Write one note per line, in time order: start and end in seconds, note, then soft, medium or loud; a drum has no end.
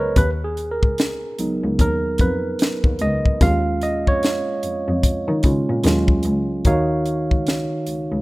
0.00 0.16 C#2 medium
0.00 0.18 A#4 medium
0.00 0.18 B4 loud
0.00 0.18 C5 medium
0.00 0.18 C#5 loud
0.00 0.18 D#5 loud
0.16 0.78 D#2 loud
0.16 0.30 B4 medium
0.16 kick loud
0.16 closed hi-hat medium
0.44 0.72 G#4 medium
0.57 closed hi-hat soft
0.71 1.09 A#4 medium
0.83 0.94 C#2 soft
0.83 kick medium
0.98 snare loud
0.98 closed hi-hat medium
1.39 1.57 C#2 soft
1.39 1.96 F#3 soft
1.39 1.96 B3 soft
1.39 1.97 D#4 medium
1.39 closed hi-hat medium
1.64 1.79 C#2 medium
1.79 2.16 D#2 medium
1.79 1.99 A#4 medium
1.79 kick medium
1.79 closed hi-hat medium
2.18 2.42 F2 medium
2.18 3.04 B4 medium
2.18 kick medium
2.18 closed hi-hat medium
2.59 snare loud
2.59 closed hi-hat medium
2.84 2.99 D#2 medium
2.84 kick medium
2.99 3.38 C#2 loud
2.99 3.43 D#5 loud
2.99 closed hi-hat medium
3.26 kick medium
3.41 4.03 D#2 loud
3.41 5.43 G#3 medium
3.41 5.44 C#4 medium
3.41 5.44 F4 medium
3.41 3.83 F5 loud
3.41 kick loud
3.41 closed hi-hat medium
3.81 4.08 D#5 medium
3.81 closed hi-hat medium
4.07 4.19 F2 soft
4.07 5.25 C#5 medium
4.07 kick medium
4.23 snare medium
4.23 closed hi-hat medium
4.63 4.81 F2 soft
4.63 closed hi-hat medium
4.88 5.02 F2 medium
5.03 kick medium
5.03 closed hi-hat medium
5.28 5.42 D#3 loud
5.43 5.67 C#3 loud
5.43 5.80 G#3 soft
5.43 5.81 C#4 soft
5.43 5.81 F4 medium
5.43 kick medium
5.43 closed hi-hat medium
5.69 5.83 A#2 medium
5.84 6.21 D#2 loud
5.84 6.62 F#3 medium
5.84 6.62 G#3 medium
5.84 6.62 C#4 medium
5.84 6.62 F4 medium
5.84 snare loud
5.84 closed hi-hat medium
6.08 kick loud
6.23 6.48 C#2 loud
6.23 closed hi-hat medium
6.65 7.27 D#2 medium
6.65 8.06 D#3 medium
6.65 8.06 D#4 medium
6.65 8.07 F#4 medium
6.65 8.07 C#5 medium
6.65 8.07 F5 medium
6.65 kick medium
6.65 closed hi-hat medium
7.06 closed hi-hat medium
7.31 7.43 C#2 soft
7.31 kick medium
7.47 snare medium
7.47 closed hi-hat medium
7.87 8.06 C#2 soft
7.87 closed hi-hat medium
8.12 8.22 C#2 medium